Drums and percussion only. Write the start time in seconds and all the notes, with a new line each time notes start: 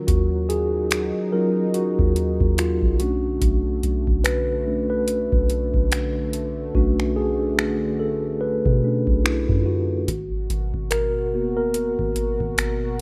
0.08 kick, closed hi-hat
0.50 closed hi-hat
0.91 finger snap, closed hi-hat
1.74 closed hi-hat
1.99 kick
2.16 closed hi-hat
2.41 kick
2.58 finger snap, closed hi-hat
2.82 kick
3.00 closed hi-hat
3.41 kick, closed hi-hat
3.83 closed hi-hat
4.07 kick
4.25 finger snap, closed hi-hat
5.08 closed hi-hat
5.32 kick
5.50 closed hi-hat
5.74 kick
5.92 finger snap, closed hi-hat
6.33 closed hi-hat
6.75 kick
7.00 finger snap
7.59 finger snap
8.66 kick
9.07 kick
9.26 finger snap
9.49 kick
10.08 kick, closed hi-hat
10.50 closed hi-hat
10.74 kick
10.91 finger snap, closed hi-hat
11.74 closed hi-hat
11.99 kick
12.16 closed hi-hat
12.40 kick
12.58 finger snap, closed hi-hat